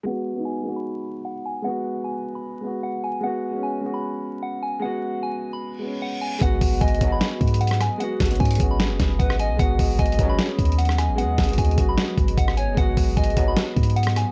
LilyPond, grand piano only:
\new Staff \with { instrumentName = "Grand piano" } { \time 4/4 \key gis \minor \tempo 4 = 151 <gis b fis'>8 r16 <gis b dis'>8 r16 <gis b fis'>4. r4 | <gis b fis'>4. r4 <gis b fis'>4 r8 | <gis b fis'>8 r16 <gis b cis'>8 r16 <gis b fis'>4. r4 | <gis b fis'>4. r4 <gis b cis'>4 r8 |
<gis b fis'>4 r8 <gis b fis'>4. r4 | <gis b fis'>8 r16 <gis b cis'>8 r16 <gis b fis'>4. r4 | <gis b fis'>4 r8 <gis b cis'>4. r4 | <gis b gis'>8 r16 <gis b fis'>8 r16 <gis b fis'>4. r4 |
<gis b fis'>4 r8 <gis b fis'>4. r4 | }